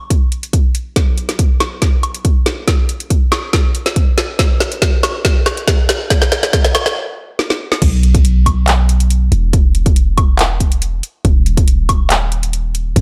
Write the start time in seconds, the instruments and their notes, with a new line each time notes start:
Already playing: 808-style bass F#1
0.10 kick, closed hi-hat
0.32 closed hi-hat
0.43 closed hi-hat
0.53 kick, closed hi-hat
0.75 closed hi-hat
0.96 808-style bass B1, kick, snare, closed hi-hat
1.18 closed hi-hat
1.29 snare, closed hi-hat
1.39 kick, closed hi-hat
1.60 snare, closed hi-hat, high woodblock
1.82 kick, snare, closed hi-hat
2.03 closed hi-hat, high woodblock
2.14 closed hi-hat
2.25 kick, closed hi-hat
2.46 808-style bass E1, snare, closed hi-hat
2.68 kick, snare, closed hi-hat
2.89 closed hi-hat
3.00 closed hi-hat
3.10 kick, closed hi-hat
3.32 snare, closed hi-hat, high woodblock
3.53 kick, snare, closed hi-hat
3.75 closed hi-hat
3.86 snare, closed hi-hat
3.96 kick, closed hi-hat
4.18 snare, closed hi-hat
4.39 808-style bass D#1, kick, snare, closed hi-hat
4.60 snare, closed hi-hat
4.72 closed hi-hat
4.82 kick, snare, closed hi-hat
5.03 snare, closed hi-hat, high woodblock
5.25 kick, snare, closed hi-hat
5.46 snare, closed hi-hat, high woodblock
5.57 closed hi-hat
5.68 kick, snare, closed hi-hat
5.89 snare, closed hi-hat
6.10 808-style bass F#1, kick, snare, closed hi-hat
6.22 snare
6.32 snare, closed hi-hat
6.43 snare, closed hi-hat
6.53 kick, snare, closed hi-hat
6.65 snare
6.75 snare, closed hi-hat, high woodblock
6.86 snare
7.39 snare
7.50 snare
7.72 snare
7.82 808-style bass B1, kick, closed hi-hat, crash
8.03 closed hi-hat
8.15 kick, closed hi-hat
8.25 closed hi-hat
8.46 kick, closed hi-hat, high woodblock
8.68 clap, closed hi-hat
8.89 closed hi-hat
9.00 closed hi-hat
9.10 closed hi-hat
9.32 808-style bass E1, closed hi-hat
9.53 kick, closed hi-hat
9.75 closed hi-hat
9.86 kick, closed hi-hat
9.96 closed hi-hat
10.18 kick, closed hi-hat, high woodblock
10.39 clap, closed hi-hat
10.60 kick, closed hi-hat
10.72 closed hi-hat
10.82 closed hi-hat
11.03 closed hi-hat
11.25 808-style bass D#1, kick, closed hi-hat
11.46 closed hi-hat
11.57 kick, closed hi-hat
11.68 closed hi-hat
11.89 kick, closed hi-hat, high woodblock
12.10 clap, closed hi-hat
12.32 closed hi-hat
12.43 closed hi-hat
12.53 closed hi-hat
12.75 closed hi-hat
12.96 808-style bass F#1, kick, closed hi-hat